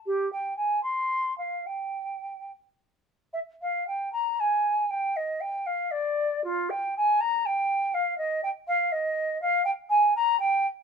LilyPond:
\new Staff \with { instrumentName = "Flute" } { \time 6/8 \key g \phrygian \tempo 4. = 79 g'8 g''8 aes''8 c'''4 f''8 | g''4. r4. | e''8 f''8 g''8 bes''8 aes''4 | g''8 ees''8 g''8 f''8 d''4 |
f'8 g''8 aes''8 bes''8 g''4 | f''8 ees''8 g''8 f''8 ees''4 | f''8 g''8 aes''8 bes''8 g''8 r8 | }